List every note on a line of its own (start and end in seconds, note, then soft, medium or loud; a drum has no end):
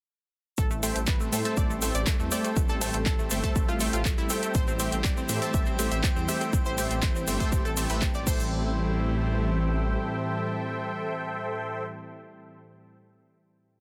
0.58 0.91 A1 loud
0.58 8.23 G3 medium
0.58 4.51 A3 medium
0.58 4.51 C4 medium
0.58 0.65 A4 loud
0.58 kick loud
0.58 closed hi-hat medium
0.58 shaker soft
0.71 0.77 A3 medium
0.71 shaker soft
0.83 0.90 A3 medium
0.83 0.98 A3 medium
0.83 0.98 A4 medium
0.83 0.98 C5 medium
0.83 0.98 E5 medium
0.83 0.98 G5 loud
0.83 open hi-hat loud
0.83 shaker medium
0.96 1.28 A1 medium
0.96 1.02 A3 medium
0.96 closed hi-hat medium
0.96 shaker soft
1.07 1.14 B4 medium
1.07 kick loud
1.07 clap loud
1.07 closed hi-hat medium
1.07 shaker medium
1.20 1.27 A3 medium
1.20 shaker soft
1.32 1.42 A2 medium
1.32 1.43 A3 medium
1.32 1.39 A3 medium
1.32 1.43 A4 medium
1.32 1.43 C5 medium
1.32 1.43 E5 medium
1.32 1.43 G5 loud
1.32 open hi-hat medium
1.32 shaker medium
1.44 1.69 A3 medium
1.44 1.52 A3 medium
1.44 1.68 A4 medium
1.44 1.69 C5 medium
1.44 1.68 E5 medium
1.44 1.69 A5 medium
1.44 closed hi-hat medium
1.44 shaker soft
1.57 1.90 A1 loud
1.57 1.64 D5 loud
1.57 kick loud
1.57 closed hi-hat medium
1.57 shaker soft
1.70 1.76 A3 medium
1.70 shaker soft
1.82 1.97 A3 medium
1.82 1.89 A3 medium
1.82 1.97 A4 medium
1.82 1.97 C5 medium
1.82 1.97 E5 medium
1.82 1.97 G5 medium
1.82 open hi-hat loud
1.82 shaker medium
1.94 2.04 A1 loud
1.94 2.01 D5 loud
1.94 closed hi-hat medium
1.94 shaker soft
2.07 2.14 A3 medium
2.07 kick loud
2.07 clap loud
2.07 closed hi-hat medium
2.07 shaker medium
2.20 2.29 E2 loud
2.20 2.26 A3 medium
2.20 shaker soft
2.31 2.55 A3 medium
2.31 2.55 A4 medium
2.31 2.55 C5 medium
2.31 2.38 D5 loud
2.31 2.55 E5 medium
2.31 2.55 G5 loud
2.31 cross-stick medium
2.31 open hi-hat medium
2.31 shaker loud
2.44 2.51 A3 medium
2.44 cross-stick medium
2.44 closed hi-hat medium
2.44 shaker soft
2.56 2.89 A1 loud
2.56 2.63 A3 medium
2.56 kick loud
2.56 closed hi-hat medium
2.56 shaker medium
2.69 2.76 A4 loud
2.69 shaker soft
2.81 2.96 A3 medium
2.81 2.88 A3 medium
2.81 2.96 A4 medium
2.81 2.96 C5 medium
2.81 2.96 E5 medium
2.81 2.96 G5 loud
2.81 open hi-hat loud
2.81 shaker loud
2.93 3.27 A1 medium
2.93 3.00 A3 medium
2.93 closed hi-hat medium
2.93 shaker soft
3.06 3.13 A4 medium
3.06 kick loud
3.06 clap loud
3.06 closed hi-hat medium
3.06 shaker medium
3.19 3.25 A3 medium
3.19 shaker soft
3.30 3.41 G1 loud
3.30 3.42 A3 medium
3.30 3.38 A3 medium
3.30 3.42 A4 medium
3.30 3.42 C5 medium
3.30 3.42 E5 medium
3.30 3.42 G5 medium
3.30 open hi-hat loud
3.30 shaker loud
3.44 3.67 A3 medium
3.44 3.67 A4 medium
3.44 3.50 A4 medium
3.44 3.67 C5 medium
3.44 3.67 E5 medium
3.44 3.67 A5 loud
3.44 kick medium
3.44 closed hi-hat medium
3.44 shaker soft
3.56 3.89 A1 loud
3.56 3.62 A3 medium
3.56 kick loud
3.56 closed hi-hat medium
3.56 shaker medium
3.68 3.75 F4 medium
3.68 cross-stick medium
3.68 shaker soft
3.80 3.95 A3 medium
3.80 3.87 A3 medium
3.80 3.95 A4 medium
3.80 3.95 C5 medium
3.80 3.95 E5 medium
3.80 3.95 G5 medium
3.80 open hi-hat loud
3.80 shaker medium
3.93 4.12 A1 medium
3.93 4.00 F4 medium
3.93 closed hi-hat medium
3.93 shaker soft
4.05 4.12 A3 medium
4.05 kick loud
4.05 clap loud
4.05 closed hi-hat medium
4.05 shaker medium
4.18 4.27 A1 medium
4.18 4.24 E4 loud
4.18 shaker soft
4.30 4.37 A3 medium
4.30 4.53 A4 loud
4.30 4.53 C5 medium
4.30 4.53 E5 medium
4.30 4.53 G5 loud
4.30 open hi-hat loud
4.30 shaker loud
4.43 4.49 A3 medium
4.43 closed hi-hat medium
4.43 shaker soft
4.54 4.88 A1 loud
4.54 8.23 E3 medium
4.54 8.23 C4 medium
4.54 4.62 C5 loud
4.54 8.53 G5 medium
4.54 kick loud
4.54 closed hi-hat medium
4.54 shaker medium
4.68 4.74 C4 medium
4.68 shaker soft
4.79 4.95 A3 medium
4.79 4.86 C4 medium
4.79 4.95 G4 medium
4.79 4.95 C5 medium
4.79 4.95 E5 medium
4.79 4.95 G5 loud
4.79 open hi-hat loud
4.79 shaker loud
4.92 5.25 A1 medium
4.92 4.99 C4 medium
4.92 closed hi-hat medium
4.92 shaker soft
5.04 5.11 D5 medium
5.04 kick loud
5.04 clap loud
5.04 closed hi-hat medium
5.04 shaker medium
5.17 5.24 C4 medium
5.17 shaker soft
5.29 5.39 A2 medium
5.29 5.40 A3 medium
5.29 5.36 C4 medium
5.29 5.40 G4 medium
5.29 5.40 C5 medium
5.29 5.40 E5 medium
5.29 5.40 G5 medium
5.29 open hi-hat loud
5.29 shaker loud
5.42 5.65 A3 medium
5.42 5.48 C4 medium
5.42 5.65 G4 medium
5.42 5.65 C5 medium
5.42 5.65 E5 medium
5.42 5.65 A5 loud
5.42 closed hi-hat medium
5.42 shaker soft
5.54 5.87 A1 loud
5.54 5.61 E5 loud
5.54 kick loud
5.54 closed hi-hat medium
5.54 shaker medium
5.66 5.73 C4 medium
5.66 shaker soft
5.79 5.94 A3 medium
5.79 5.85 C4 medium
5.79 5.94 G4 medium
5.79 5.94 C5 medium
5.79 5.94 E5 medium
5.79 5.94 G5 medium
5.79 open hi-hat loud
5.79 shaker loud
5.91 6.01 A1 loud
5.91 5.98 E5 loud
5.91 closed hi-hat medium
5.91 shaker soft
6.04 6.10 C4 medium
6.04 kick loud
6.04 clap loud
6.04 closed hi-hat medium
6.04 shaker medium
6.16 6.26 E2 loud
6.16 6.23 C4 medium
6.16 shaker soft
6.28 6.52 A3 loud
6.28 6.52 G4 medium
6.28 6.52 C5 medium
6.28 6.35 E5 loud
6.28 6.52 E5 medium
6.28 6.52 G5 loud
6.28 cross-stick medium
6.28 open hi-hat loud
6.28 shaker loud
6.41 6.47 C4 medium
6.41 cross-stick medium
6.41 closed hi-hat medium
6.41 shaker soft
6.53 6.86 A1 medium
6.53 6.60 C4 medium
6.53 kick loud
6.53 closed hi-hat medium
6.53 shaker medium
6.65 6.72 C5 loud
6.65 shaker soft
6.78 6.93 A3 medium
6.78 6.85 C4 medium
6.78 6.93 G4 medium
6.78 6.93 C5 medium
6.78 6.93 E5 medium
6.78 6.93 G5 loud
6.78 open hi-hat loud
6.78 shaker loud
6.91 7.23 A1 medium
6.91 6.97 C4 medium
6.91 closed hi-hat medium
6.91 shaker soft
7.02 7.10 C5 medium
7.02 kick loud
7.02 clap loud
7.02 closed hi-hat medium
7.02 shaker medium
7.15 7.22 C4 medium
7.15 shaker soft
7.27 7.37 G1 medium
7.27 7.38 A3 medium
7.27 7.34 C4 medium
7.27 7.38 G4 medium
7.27 7.38 C5 medium
7.27 7.38 E5 medium
7.27 7.38 G5 loud
7.27 open hi-hat loud
7.27 shaker loud
7.40 7.64 A3 medium
7.40 7.64 G4 medium
7.40 7.64 C5 medium
7.40 7.47 C5 medium
7.40 7.64 E5 medium
7.40 7.64 A5 loud
7.40 kick medium
7.40 closed hi-hat medium
7.40 shaker soft
7.52 7.85 A1 loud
7.52 7.59 C4 medium
7.52 kick loud
7.52 closed hi-hat medium
7.52 shaker medium
7.65 7.71 A4 medium
7.65 cross-stick medium
7.65 shaker soft
7.77 7.88 A3 medium
7.77 7.84 C4 medium
7.77 7.88 G4 medium
7.77 7.88 C5 medium
7.77 7.88 E5 medium
7.77 7.88 A5 medium
7.77 open hi-hat loud
7.77 shaker medium
7.89 8.09 A1 medium
7.89 8.04 A3 loud
7.89 8.04 G4 medium
7.89 7.96 B4 medium
7.89 8.04 C5 medium
7.89 8.04 E5 medium
7.89 8.04 G5 loud
7.89 closed hi-hat medium
7.89 shaker soft
8.02 8.09 C4 medium
8.02 kick loud
8.02 clap loud
8.02 closed hi-hat medium
8.02 shaker medium
8.14 8.24 A1 medium
8.14 8.21 D5 loud
8.14 shaker soft
8.27 9.96 A1 loud
8.27 11.83 A2 medium
8.27 11.84 E3 medium
8.27 11.83 G3 medium
8.27 11.83 C4 medium
8.27 11.83 A4 medium
8.27 11.83 C5 medium
8.27 11.83 E5 medium
8.27 11.83 G5 medium
8.27 kick loud
8.27 crash medium
8.27 shaker loud
8.39 shaker soft